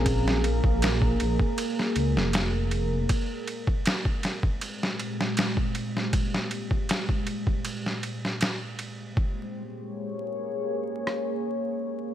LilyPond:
<<
  \new Staff \with { instrumentName = "Ambient pad" } { \time 4/4 \key bes \dorian \tempo 4 = 79 <bes aes' bes'>1 | <bes, aes g' c''>1~ | <bes, aes g' c''>1 | <bes aes' des''>1 | }
  \new Staff \with { instrumentName = "Tine electric piano" } { \time 4/4 \key bes \dorian <c' des' aes'>8 r2. r8 | r1 | r1 | r1 | }
  \new Staff \with { instrumentName = "Detuned saw bass" } { \clef bass \time 4/4 \key bes \dorian bes,,8. bes,,8. bes,,16 r8. des,16 f,,4~ f,,16 | r1 | r1 | r1 | }
  \new DrumStaff \with { instrumentName = "Drums" } \drummode { \time 4/4 <bd cymr>16 sn16 cymr16 bd16 <cymr sn>16 bd16 cymr16 bd16 cymr16 sn16 cymr16 sn16 <cymr sn>8 cymr8 | <bd cymr>8 cymr16 bd16 <cymr sn>16 bd16 <cymr sn>16 bd16 cymr16 sn16 cymr16 sn16 <cymr sn>16 bd16 cymr16 sn16 | <bd cymr>16 sn16 cymr16 bd16 <cymr sn>16 bd16 cymr16 bd16 cymr16 sn16 cymr16 sn16 <cymr sn>8 cymr8 | bd4 r4 r8 ss8 r4 | }
>>